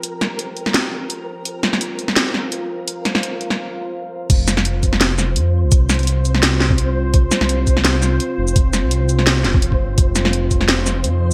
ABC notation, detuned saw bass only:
X:1
M:4/4
L:1/16
Q:"Swing 16ths" 1/4=169
K:Cphr
V:1 name="Detuned saw bass" clef=bass
z16 | z16 | z16 | F,,,12 F,,3 C,,- |
C,,3 C,,12- C,,- | C,,2 z C,,4- C,, C,,4 z2 F,,,2- | F,,,3 C,,6- C,, E,,, F,,, F,,,2 G,,,2 | F,,,12 F,,3 z |]